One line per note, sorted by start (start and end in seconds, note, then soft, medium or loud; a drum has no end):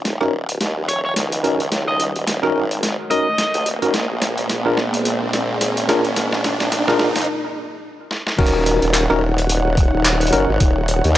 0.00 3.90 D#4 medium
0.00 3.90 C#5 medium
0.00 3.90 F#5 medium
0.00 riser medium
0.05 0.59 D#1 loud
0.05 snare soft
0.05 closed hi-hat medium
0.21 0.32 C#4 medium
0.21 0.32 D#4 medium
0.21 0.32 F#4 medium
0.21 0.32 A#4 medium
0.21 cross-stick soft
0.49 closed hi-hat medium
0.61 0.87 D#2 loud
0.61 snare medium
0.61 closed hi-hat medium
0.88 1.14 D#1 loud
0.88 0.99 C#5 medium
0.88 closed hi-hat medium
1.05 1.12 C#5 medium
1.16 1.70 C#2 medium
1.16 snare medium
1.16 closed hi-hat medium
1.32 closed hi-hat medium
1.44 1.59 C#4 medium
1.44 1.59 D#4 medium
1.44 1.59 F#4 medium
1.44 1.59 A#4 medium
1.44 closed hi-hat medium
1.60 closed hi-hat soft
1.71 2.13 C#2 medium
1.71 snare medium
1.71 closed hi-hat medium
1.88 2.02 D#5 medium
2.00 closed hi-hat medium
2.15 2.53 D#1 loud
2.15 closed hi-hat soft
2.27 snare medium
2.27 closed hi-hat medium
2.43 2.63 C#4 loud
2.43 2.63 D#4 medium
2.43 2.63 F#4 medium
2.43 2.63 A#4 loud
2.43 cross-stick soft
2.55 2.96 G#1 medium
2.71 closed hi-hat medium
2.83 snare medium
2.83 closed hi-hat medium
3.11 3.26 C#4 medium
3.11 3.26 D#4 medium
3.11 3.26 F#4 medium
3.11 3.26 A#4 medium
3.11 3.66 D#5 medium
3.11 closed hi-hat medium
3.38 snare medium
3.38 closed hi-hat medium
3.54 3.64 C#2 medium
3.54 closed hi-hat medium
3.66 3.80 D#1 medium
3.66 closed hi-hat medium
3.82 3.92 F#1 loud
3.82 3.93 C#4 medium
3.82 3.93 D#4 medium
3.82 3.93 F#4 medium
3.82 3.93 A#4 loud
3.82 closed hi-hat soft
3.94 4.48 A#1 loud
3.94 7.24 A#3 medium
3.94 7.24 G#4 medium
3.94 7.24 D5 medium
3.94 snare medium
3.94 closed hi-hat medium
4.22 snare medium
4.22 closed hi-hat medium
4.38 closed hi-hat soft
4.50 5.03 A#1 loud
4.50 snare medium
4.50 closed hi-hat medium
4.66 4.77 D4 medium
4.66 4.77 F4 medium
4.66 4.77 G#4 medium
4.66 4.77 A#4 loud
4.77 snare medium
4.94 closed hi-hat medium
5.05 5.31 A#1 loud
5.05 closed hi-hat medium
5.33 5.59 A#1 loud
5.33 snare medium
5.33 closed hi-hat medium
5.61 6.15 G#1 medium
5.61 snare medium
5.61 closed hi-hat medium
5.77 closed hi-hat medium
5.89 6.04 D4 medium
5.89 6.04 F4 medium
5.89 6.04 G#4 medium
5.89 6.04 A#4 loud
5.89 snare medium
5.89 closed hi-hat medium
6.05 closed hi-hat soft
6.16 6.58 G#1 medium
6.16 snare medium
6.16 closed hi-hat medium
6.33 snare medium
6.44 snare loud
6.44 closed hi-hat medium
6.60 6.98 A#1 medium
6.60 snare medium
6.60 closed hi-hat soft
6.72 snare medium
6.72 closed hi-hat medium
6.88 7.08 D4 loud
6.88 7.08 F4 medium
6.88 7.08 G#4 medium
6.88 7.08 A#4 loud
6.88 snare medium
6.99 7.13 A#1 loud
6.99 snare loud
7.16 7.27 F2 medium
7.16 snare medium
7.16 closed hi-hat medium
7.19 closed hi-hat soft
7.22 closed hi-hat soft
7.25 closed hi-hat soft
8.11 snare medium
8.27 snare medium
8.38 8.80 D#1 loud
8.38 9.04 C#4 medium
8.38 9.04 D#4 medium
8.38 11.18 D#4 medium
8.38 9.04 F#4 medium
8.38 9.04 A#4 loud
8.38 11.18 C#5 medium
8.38 11.18 F#5 medium
8.38 kick loud
8.38 crash loud
8.46 closed hi-hat medium
8.66 closed hi-hat medium
8.82 9.08 D#1 medium
8.82 closed hi-hat soft
8.94 clap loud
8.94 closed hi-hat medium
9.10 9.91 D#1 loud
9.10 9.21 C#4 medium
9.10 9.21 D#4 medium
9.10 9.21 F#4 medium
9.10 9.21 A#4 loud
9.10 cross-stick medium
9.38 closed hi-hat medium
9.49 closed hi-hat medium
9.77 kick loud
9.77 closed hi-hat medium
9.94 10.31 D#1 loud
10.05 clap loud
10.05 closed hi-hat medium
10.21 closed hi-hat medium
10.27 closed hi-hat medium
10.33 10.46 F#1 loud
10.33 10.48 C#4 medium
10.33 10.48 D#4 medium
10.33 10.48 F#4 medium
10.33 10.48 A#4 loud
10.33 closed hi-hat medium
10.49 10.59 G#1 medium
10.60 11.02 D#1 loud
10.60 kick loud
10.60 closed hi-hat medium
10.88 closed hi-hat medium
11.04 11.18 D#2 medium
11.04 closed hi-hat soft